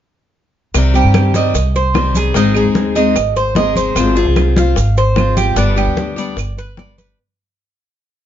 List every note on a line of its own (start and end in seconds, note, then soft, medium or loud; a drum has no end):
0.74 1.03 C2 medium
0.74 0.93 C3 medium
0.74 0.94 D#3 medium
0.74 0.94 G3 medium
0.74 0.94 C4 medium
0.74 0.93 G4 medium
0.74 high bongo medium
0.74 high conga soft
0.74 claves medium
0.74 maracas medium
0.94 1.35 D#3 medium
0.94 1.34 G3 medium
0.94 1.33 C4 medium
0.94 1.33 G4 medium
0.94 1.34 G4 medium
0.94 high conga soft
0.94 maracas soft
1.04 1.52 G2 medium
1.14 high bongo medium
1.14 high conga loud
1.14 claves medium
1.14 maracas soft
1.34 1.53 D#3 soft
1.34 1.54 G3 medium
1.34 1.54 C4 medium
1.34 1.53 G4 medium
1.34 1.74 D#5 medium
1.34 high conga medium
1.34 maracas medium
1.54 2.30 C2 medium
1.54 muted steel-string acoustic guitar stroke medium
1.54 high bongo medium
1.54 high conga soft
1.54 maracas medium
1.74 2.14 C5 medium
1.74 high conga soft
1.74 maracas soft
1.94 2.33 D#3 soft
1.94 2.34 G3 soft
1.94 2.35 C4 soft
1.94 2.35 G4 medium
1.94 high bongo medium
1.94 low bongo medium
1.94 high conga medium
1.94 claves medium
1.94 maracas soft
2.15 2.35 G#4 medium
2.15 high conga medium
2.15 maracas medium
2.34 2.63 G#1 medium
2.34 2.54 D#3 medium
2.34 2.54 G#3 medium
2.34 2.55 C4 medium
2.34 2.55 D#4 medium
2.34 2.54 D#4 medium
2.34 2.53 G#4 medium
2.34 high bongo medium
2.34 high conga soft
2.34 maracas medium
2.54 2.95 G#3 medium
2.54 2.95 C4 medium
2.54 2.95 D#4 medium
2.54 2.94 G#4 medium
2.54 2.95 G#4 medium
2.54 high conga soft
2.54 claves medium
2.54 maracas soft
2.65 3.13 D#2 medium
2.75 high bongo medium
2.75 high conga medium
2.75 maracas soft
2.95 3.15 G#3 medium
2.95 3.15 C4 medium
2.95 3.15 D#4 medium
2.95 3.14 G#4 medium
2.95 3.35 D#5 medium
2.95 high bongo soft
2.95 high conga soft
2.95 maracas medium
3.15 3.92 G#1 medium
3.15 muted steel-string acoustic guitar stroke medium
3.15 high bongo medium
3.15 high conga soft
3.15 claves medium
3.15 maracas medium
3.36 3.55 C5 medium
3.36 high bongo soft
3.36 high conga soft
3.36 maracas soft
3.55 3.94 G#3 soft
3.55 3.95 C4 soft
3.55 3.96 D#4 medium
3.55 3.96 G#4 medium
3.55 3.75 D#5 medium
3.55 high bongo medium
3.55 low bongo medium
3.55 high conga medium
3.55 maracas soft
3.76 4.15 C5 medium
3.76 high bongo soft
3.76 high conga medium
3.76 maracas medium
3.95 4.24 G#1 loud
3.95 4.15 G#3 medium
3.95 4.16 C4 medium
3.95 4.14 F4 medium
3.95 high bongo medium
3.95 high conga soft
3.95 claves medium
3.95 maracas medium
4.16 4.56 C4 soft
4.16 4.55 F4 medium
4.16 4.55 G#4 medium
4.16 high conga soft
4.16 maracas soft
4.26 4.74 C2 medium
4.36 high bongo medium
4.36 high conga medium
4.36 claves medium
4.36 maracas soft
4.56 4.76 C4 medium
4.56 4.75 F4 medium
4.56 4.96 F5 medium
4.56 high conga medium
4.56 maracas medium
4.76 5.52 G#1 medium
4.76 muted steel-string acoustic guitar stroke medium
4.76 high bongo medium
4.76 high conga soft
4.76 maracas medium
4.97 5.36 C5 medium
4.97 high conga soft
4.97 maracas soft
5.16 5.56 G#3 soft
5.16 5.56 C4 soft
5.16 5.57 F4 medium
5.16 high bongo medium
5.16 low bongo medium
5.16 high conga medium
5.16 claves medium
5.16 maracas soft
5.37 5.56 G4 medium
5.37 high conga medium
5.37 maracas medium
5.56 5.85 G1 loud
5.56 5.76 D3 medium
5.56 5.76 G3 medium
5.56 5.76 B3 medium
5.56 5.76 D4 medium
5.56 5.75 G4 medium
5.56 high bongo medium
5.56 high conga soft
5.56 maracas medium
5.76 6.17 G3 soft
5.76 6.17 B3 medium
5.76 6.16 D4 medium
5.76 6.15 G4 medium
5.76 6.16 G4 medium
5.76 high conga soft
5.76 claves medium
5.76 maracas soft
5.86 6.34 D2 medium
5.97 high bongo medium
5.97 high conga medium
5.97 maracas soft
6.16 6.36 G3 medium
6.16 6.36 B3 medium
6.16 6.36 D4 medium
6.16 6.36 G4 medium
6.16 6.57 D5 medium
6.16 high bongo soft
6.16 high conga soft
6.16 maracas medium
6.36 7.13 G1 medium
6.36 muted steel-string acoustic guitar stroke medium
6.36 high bongo medium
6.36 high conga soft
6.36 claves medium
6.36 maracas medium
6.57 6.77 B4 medium
6.57 high bongo soft
6.57 high conga soft
6.57 maracas soft
6.77 7.17 G3 soft
6.77 7.17 B3 soft
6.77 7.17 D4 medium
6.77 7.18 G4 soft
6.77 6.98 D5 medium
6.77 high bongo medium
6.77 low bongo medium
6.77 high conga medium
6.77 maracas soft
6.98 7.17 B4 medium
6.98 high bongo soft
6.98 high conga medium
6.98 maracas medium